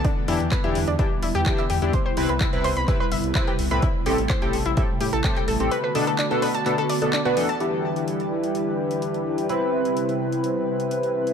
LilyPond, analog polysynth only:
\new Staff \with { instrumentName = "Analog polysynth" } { \time 4/4 \key e \minor \tempo 4 = 127 r8 <e d' e' g'>16 r8 <e d' e' g'>16 r8 <e d' e' g'>16 r8. <e d' e' g'>16 r8 <d' e' g'>16 | r8 <c c' e' b'>16 r8 <c c' e' b'>16 r8 <c c' e' b'>16 r8. <c c' e' b'>16 r8 <a, c' e' b'>16 | r8 <a, c' g' a'>16 r8 <a, c' g' a'>16 r8 <a, c' g' a'>16 r8. <a, c' g' a'>16 r8 <c' g' a'>16 | r8 <b, b d' a'>16 r8 <b, b d' a'>16 r8 <b, b d' a'>16 r8 <b, b d' a'>16 r16 <b, b d' b'>16 <e b d' a'>16 r16 |
<e d' e' g'>1 | <c c' e' b'>1 | }